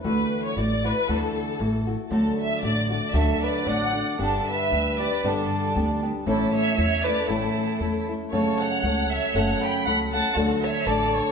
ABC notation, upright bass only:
X:1
M:2/4
L:1/8
Q:"Swing" 1/4=116
K:D
V:1 name="Upright bass" clef=bass
D,, z A,,,2 | D,, z A,,,2 | D,, z A,,,2 | D,, z A,,,2 |
G,,, z D,,2 | G,,, z D,,2 | A,,, z E,,2 | A,,, z E,,2 |
F,,, z C,,2 | F,,, z C,,2 | D,, z A,,,2 |]